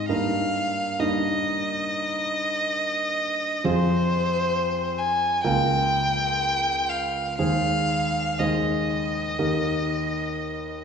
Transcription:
0, 0, Header, 1, 3, 480
1, 0, Start_track
1, 0, Tempo, 904977
1, 49, Time_signature, 4, 2, 24, 8
1, 1009, Tempo, 873362
1, 1969, Tempo, 899550
1, 2929, Tempo, 970874
1, 3889, Tempo, 990099
1, 5563, End_track
2, 0, Start_track
2, 0, Title_t, "Violin"
2, 0, Program_c, 0, 40
2, 43, Note_on_c, 0, 77, 67
2, 527, Note_on_c, 0, 75, 63
2, 535, Note_off_c, 0, 77, 0
2, 1966, Note_on_c, 0, 72, 73
2, 1974, Note_off_c, 0, 75, 0
2, 2680, Note_on_c, 0, 80, 67
2, 2688, Note_off_c, 0, 72, 0
2, 2921, Note_off_c, 0, 80, 0
2, 2924, Note_on_c, 0, 79, 79
2, 3639, Note_on_c, 0, 77, 60
2, 3646, Note_off_c, 0, 79, 0
2, 3880, Note_off_c, 0, 77, 0
2, 3883, Note_on_c, 0, 77, 72
2, 4372, Note_on_c, 0, 75, 54
2, 4379, Note_off_c, 0, 77, 0
2, 5563, Note_off_c, 0, 75, 0
2, 5563, End_track
3, 0, Start_track
3, 0, Title_t, "Grand piano"
3, 0, Program_c, 1, 0
3, 0, Control_c, 1, 64, 127
3, 0, Note_on_c, 1, 44, 42
3, 0, Note_on_c, 1, 60, 31
3, 0, Note_on_c, 1, 63, 31
3, 0, Note_on_c, 1, 68, 32
3, 49, Note_off_c, 1, 63, 0
3, 49, Note_on_c, 1, 43, 40
3, 49, Note_on_c, 1, 58, 31
3, 49, Note_on_c, 1, 63, 32
3, 49, Note_on_c, 1, 70, 31
3, 57, Control_c, 1, 64, 0
3, 59, Note_off_c, 1, 44, 0
3, 59, Note_off_c, 1, 68, 0
3, 60, Note_off_c, 1, 60, 0
3, 151, Control_c, 1, 64, 127
3, 516, Note_off_c, 1, 43, 0
3, 516, Note_off_c, 1, 58, 0
3, 516, Note_off_c, 1, 63, 0
3, 516, Note_off_c, 1, 70, 0
3, 527, Note_on_c, 1, 43, 42
3, 527, Note_on_c, 1, 70, 31
3, 528, Note_on_c, 1, 58, 35
3, 529, Note_on_c, 1, 63, 34
3, 1945, Note_off_c, 1, 43, 0
3, 1945, Note_off_c, 1, 70, 0
3, 1946, Note_off_c, 1, 58, 0
3, 1946, Note_off_c, 1, 63, 0
3, 1965, Note_on_c, 1, 60, 40
3, 1967, Note_on_c, 1, 41, 44
3, 1967, Note_on_c, 1, 68, 35
3, 1968, Note_on_c, 1, 65, 36
3, 1978, Control_c, 1, 64, 0
3, 2074, Control_c, 1, 64, 127
3, 2905, Note_off_c, 1, 60, 0
3, 2906, Note_off_c, 1, 41, 0
3, 2906, Note_off_c, 1, 68, 0
3, 2907, Note_off_c, 1, 65, 0
3, 2926, Note_on_c, 1, 37, 40
3, 2926, Note_on_c, 1, 58, 34
3, 2926, Note_on_c, 1, 70, 34
3, 2927, Note_on_c, 1, 65, 36
3, 2937, Control_c, 1, 64, 0
3, 3015, Control_c, 1, 64, 127
3, 3867, Note_off_c, 1, 37, 0
3, 3867, Note_off_c, 1, 58, 0
3, 3867, Note_off_c, 1, 65, 0
3, 3867, Note_off_c, 1, 70, 0
3, 3889, Note_on_c, 1, 39, 41
3, 3889, Note_on_c, 1, 68, 37
3, 3889, Note_on_c, 1, 72, 35
3, 3890, Note_on_c, 1, 56, 33
3, 3896, Control_c, 1, 64, 0
3, 3985, Control_c, 1, 64, 127
3, 4362, Note_off_c, 1, 39, 0
3, 4362, Note_off_c, 1, 56, 0
3, 4362, Note_off_c, 1, 68, 0
3, 4362, Note_off_c, 1, 72, 0
3, 4376, Note_on_c, 1, 56, 32
3, 4376, Note_on_c, 1, 72, 33
3, 4377, Note_on_c, 1, 39, 37
3, 4377, Note_on_c, 1, 68, 33
3, 4842, Note_off_c, 1, 39, 0
3, 4842, Note_off_c, 1, 56, 0
3, 4842, Note_off_c, 1, 68, 0
3, 4842, Note_off_c, 1, 72, 0
3, 4858, Note_on_c, 1, 58, 31
3, 4859, Note_on_c, 1, 39, 38
3, 4859, Note_on_c, 1, 67, 32
3, 4859, Note_on_c, 1, 70, 33
3, 4865, Control_c, 1, 64, 0
3, 4963, Control_c, 1, 64, 127
3, 5563, Note_off_c, 1, 39, 0
3, 5563, Note_off_c, 1, 58, 0
3, 5563, Note_off_c, 1, 67, 0
3, 5563, Note_off_c, 1, 70, 0
3, 5563, End_track
0, 0, End_of_file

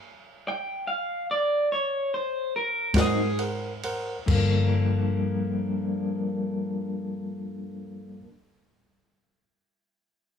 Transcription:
0, 0, Header, 1, 6, 480
1, 0, Start_track
1, 0, Key_signature, -2, "minor"
1, 0, Tempo, 823045
1, 969, Tempo, 860832
1, 1929, Tempo, 907716
1, 2404, Time_signature, 12, 3, 24, 8
1, 5634, End_track
2, 0, Start_track
2, 0, Title_t, "Clean electric guitar"
2, 0, Program_c, 0, 27
2, 281, Note_on_c, 0, 79, 104
2, 496, Note_off_c, 0, 79, 0
2, 510, Note_on_c, 0, 77, 83
2, 732, Note_off_c, 0, 77, 0
2, 764, Note_on_c, 0, 74, 100
2, 981, Note_off_c, 0, 74, 0
2, 1003, Note_on_c, 0, 73, 92
2, 1215, Note_off_c, 0, 73, 0
2, 1236, Note_on_c, 0, 72, 91
2, 1452, Note_off_c, 0, 72, 0
2, 1470, Note_on_c, 0, 70, 88
2, 1691, Note_off_c, 0, 70, 0
2, 1712, Note_on_c, 0, 68, 107
2, 1936, Note_off_c, 0, 68, 0
2, 5634, End_track
3, 0, Start_track
3, 0, Title_t, "Tine electric piano"
3, 0, Program_c, 1, 4
3, 1692, Note_on_c, 1, 70, 69
3, 1695, Note_on_c, 1, 72, 60
3, 1695, Note_on_c, 1, 78, 78
3, 1872, Note_off_c, 1, 70, 0
3, 1873, Note_off_c, 1, 72, 0
3, 1873, Note_off_c, 1, 78, 0
3, 1933, Note_on_c, 1, 78, 65
3, 1935, Note_on_c, 1, 70, 62
3, 1935, Note_on_c, 1, 72, 60
3, 2108, Note_off_c, 1, 70, 0
3, 2108, Note_off_c, 1, 72, 0
3, 2108, Note_off_c, 1, 78, 0
3, 2172, Note_on_c, 1, 72, 65
3, 2173, Note_on_c, 1, 70, 70
3, 2173, Note_on_c, 1, 78, 72
3, 2347, Note_off_c, 1, 70, 0
3, 2347, Note_off_c, 1, 72, 0
3, 2347, Note_off_c, 1, 78, 0
3, 2400, Note_on_c, 1, 69, 69
3, 2411, Note_on_c, 1, 70, 58
3, 2419, Note_on_c, 1, 77, 72
3, 4467, Note_off_c, 1, 69, 0
3, 4478, Note_off_c, 1, 70, 0
3, 4486, Note_off_c, 1, 77, 0
3, 5634, End_track
4, 0, Start_track
4, 0, Title_t, "Clean electric guitar"
4, 0, Program_c, 2, 27
4, 1684, Note_on_c, 2, 63, 82
4, 1691, Note_on_c, 2, 60, 67
4, 1694, Note_on_c, 2, 54, 63
4, 1696, Note_on_c, 2, 44, 62
4, 1831, Note_off_c, 2, 63, 0
4, 1834, Note_off_c, 2, 60, 0
4, 1836, Note_off_c, 2, 54, 0
4, 1837, Note_off_c, 2, 44, 0
4, 2394, Note_on_c, 2, 43, 69
4, 2409, Note_on_c, 2, 53, 79
4, 2424, Note_on_c, 2, 58, 82
4, 2439, Note_on_c, 2, 62, 95
4, 4482, Note_off_c, 2, 43, 0
4, 4497, Note_off_c, 2, 53, 0
4, 4512, Note_off_c, 2, 58, 0
4, 4527, Note_off_c, 2, 62, 0
4, 5634, End_track
5, 0, Start_track
5, 0, Title_t, "Picked electric bass"
5, 0, Program_c, 3, 34
5, 1683, Note_on_c, 3, 44, 91
5, 2382, Note_off_c, 3, 44, 0
5, 2405, Note_on_c, 3, 31, 89
5, 4472, Note_off_c, 3, 31, 0
5, 5634, End_track
6, 0, Start_track
6, 0, Title_t, "Drums"
6, 1682, Note_on_c, 9, 51, 83
6, 1683, Note_on_c, 9, 36, 85
6, 1697, Note_on_c, 9, 38, 118
6, 1737, Note_off_c, 9, 51, 0
6, 1739, Note_off_c, 9, 36, 0
6, 1753, Note_off_c, 9, 38, 0
6, 1931, Note_on_c, 9, 51, 61
6, 1984, Note_off_c, 9, 51, 0
6, 2167, Note_on_c, 9, 51, 67
6, 2220, Note_off_c, 9, 51, 0
6, 2404, Note_on_c, 9, 36, 116
6, 2404, Note_on_c, 9, 49, 101
6, 2456, Note_off_c, 9, 49, 0
6, 2457, Note_off_c, 9, 36, 0
6, 5634, End_track
0, 0, End_of_file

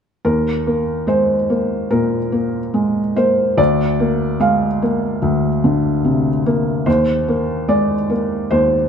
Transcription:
0, 0, Header, 1, 2, 480
1, 0, Start_track
1, 0, Tempo, 834492
1, 141, Time_signature, 4, 2, 24, 8
1, 2061, Tempo, 821918
1, 5158, End_track
2, 0, Start_track
2, 0, Title_t, "Felt piano"
2, 0, Program_c, 0, 0
2, 142, Note_on_c, 0, 70, 44
2, 144, Note_on_c, 0, 39, 30
2, 261, Control_c, 0, 64, 127
2, 385, Note_on_c, 0, 58, 25
2, 599, Note_off_c, 0, 70, 0
2, 615, Note_on_c, 0, 56, 22
2, 620, Note_on_c, 0, 72, 43
2, 767, Note_off_c, 0, 58, 0
2, 858, Note_off_c, 0, 56, 0
2, 862, Note_on_c, 0, 58, 25
2, 1077, Note_off_c, 0, 72, 0
2, 1079, Note_off_c, 0, 39, 0
2, 1096, Note_on_c, 0, 70, 47
2, 1100, Note_on_c, 0, 46, 30
2, 1245, Note_off_c, 0, 58, 0
2, 1336, Note_on_c, 0, 58, 28
2, 1483, Note_off_c, 0, 46, 0
2, 1575, Note_on_c, 0, 56, 29
2, 1721, Note_off_c, 0, 58, 0
2, 1794, Note_off_c, 0, 70, 0
2, 1817, Note_off_c, 0, 56, 0
2, 1818, Note_on_c, 0, 58, 29
2, 1821, Note_on_c, 0, 72, 49
2, 2043, Note_off_c, 0, 72, 0
2, 2055, Note_on_c, 0, 38, 40
2, 2057, Note_on_c, 0, 74, 59
2, 2059, Note_off_c, 0, 58, 0
2, 2071, Control_c, 0, 64, 0
2, 2181, Control_c, 0, 64, 127
2, 2304, Note_on_c, 0, 58, 36
2, 2517, Note_off_c, 0, 74, 0
2, 2537, Note_on_c, 0, 56, 30
2, 2542, Note_on_c, 0, 77, 48
2, 2687, Note_off_c, 0, 58, 0
2, 2779, Note_off_c, 0, 56, 0
2, 2785, Note_on_c, 0, 58, 34
2, 2997, Note_off_c, 0, 38, 0
2, 3018, Note_on_c, 0, 38, 36
2, 3169, Note_off_c, 0, 58, 0
2, 3262, Note_on_c, 0, 50, 33
2, 3500, Note_on_c, 0, 48, 33
2, 3645, Note_off_c, 0, 50, 0
2, 3718, Note_off_c, 0, 77, 0
2, 3740, Note_off_c, 0, 48, 0
2, 3743, Note_on_c, 0, 58, 35
2, 3955, Note_off_c, 0, 38, 0
2, 3975, Note_on_c, 0, 72, 52
2, 3977, Note_on_c, 0, 39, 38
2, 3981, Note_off_c, 0, 58, 0
2, 3990, Control_c, 0, 64, 0
2, 4072, Control_c, 0, 64, 127
2, 4221, Note_on_c, 0, 58, 35
2, 4433, Note_off_c, 0, 72, 0
2, 4455, Note_on_c, 0, 56, 29
2, 4457, Note_on_c, 0, 74, 48
2, 4604, Note_off_c, 0, 58, 0
2, 4697, Note_off_c, 0, 56, 0
2, 4697, Note_on_c, 0, 58, 27
2, 4915, Note_off_c, 0, 39, 0
2, 4916, Note_off_c, 0, 74, 0
2, 4936, Note_on_c, 0, 72, 53
2, 4941, Note_on_c, 0, 39, 36
2, 5084, Note_off_c, 0, 58, 0
2, 5158, Note_off_c, 0, 39, 0
2, 5158, Note_off_c, 0, 72, 0
2, 5158, End_track
0, 0, End_of_file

